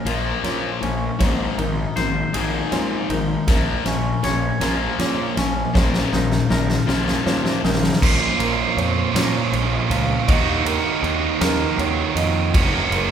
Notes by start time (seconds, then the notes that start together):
Already playing: A#2 C#4 A#4
0.05 A#1 A#2 F3 A#3 F4 A#4, ride
0.44 A#2 A#3 C#5, snare, ride
0.82 A#1 A#2 F3 C#4, ride
1.19 A#1 G#2 A#2 D#3 G#3 C5, kick, snare, ride
1.58 A#1 G#2 D#3 D#4 A#4, ride
1.96 A#1 G#2 D#3 A#4 C5, snare, ride
2.33 A#1 G#2 D#3 G#3 G#4, ride
2.71 A#2 G#3 C5, snare, ride
3.10 A#1 G#2 D#3 D#4 A#4, ride
3.48 A#1 A#2 F3 A#3 A#4, kick, snare, ride
3.86 A#1 A#2 F3 C#4, snare, ride
4.23 A#1 A#2 F3 C#5, snare, ride
4.61 A#1 A#2 F3 A#3 F4 A#4, snare, ride
4.99 A#2 A#3 C#5, snare, ride
5.37 A#1 A#2 F3 C#4, snare, ride
5.74 A#1 A#2 D#3 A#3 C5, kick, snare
5.94 snare
6.12 A#1 A#2 D#3 D#4 A#4, snare
6.32 snare
6.49 A#1 A#2 D#3 A#4, snare
6.70 snare
6.86 A#1 A#2 D#3 A#3 F4, snare
7.08 snare
7.26 A#2 A#3 C5, snare
7.46 snare
7.63 A#1 A#2 D#3 D#4 A#4, snare
7.74 snare
7.84 snare
7.93 snare
8.02 A#1 A#2 F3 A#3 C#4 F4, kick, crash
8.39 A#1 A#4, ride
8.77 F2 C5, ride
9.14 A#2 C#5, snare, ride
9.52 A#1, ride
9.90 C#2 F5, ride
10.28 D#2 D#3 A#3 D#4 F#4 D#5, kick, ride
10.66 A#4, ride
11.03 D#2, ride
11.41 D#2 A#4, snare, ride
11.78 D#2 C#5, ride
12.15 F2 D#5, ride
12.54 F#1 F#3 A#3 C#4 F#4, kick, ride
12.91 F#1 A#4, ride